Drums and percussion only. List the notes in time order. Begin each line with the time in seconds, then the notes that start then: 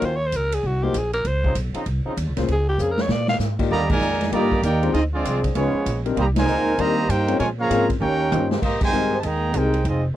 0.02 kick, ride
0.32 kick, hi-hat pedal, ride
0.52 ride
0.63 kick
0.94 kick, hi-hat pedal, ride
1.13 ride
1.25 kick, ride
1.44 kick
1.55 kick, hi-hat pedal, ride
1.74 ride
1.86 kick, ride
2.17 kick, hi-hat pedal, ride
2.37 snare, ride
2.48 kick, ride
2.79 hi-hat pedal
2.98 snare
3.09 snare
3.28 snare
3.40 snare, hi-hat pedal
3.59 kick, crash
3.89 kick, crash
4.01 hi-hat pedal
4.12 snare
4.21 snare, ride
4.32 kick, ride
4.52 kick
4.63 hi-hat pedal, ride
4.83 ride
4.94 kick, ride
5.25 kick, hi-hat pedal, ride
5.44 kick, ride
5.55 kick, ride
5.86 kick, hi-hat pedal, ride
6.06 ride
6.17 kick, ride
6.36 snare, ride
6.48 hi-hat pedal
6.78 kick, ride
7.09 kick, hi-hat pedal, ride
7.28 ride
7.40 kick, ride
7.70 kick, hi-hat pedal, ride
7.90 kick, ride
8.01 mid tom
8.32 hi-hat pedal, mid tom
8.51 snare
8.62 kick, crash
8.81 kick, crash
8.92 hi-hat pedal
9.23 kick, ride
9.54 kick, hi-hat pedal, ride
9.74 ride
9.85 kick, ride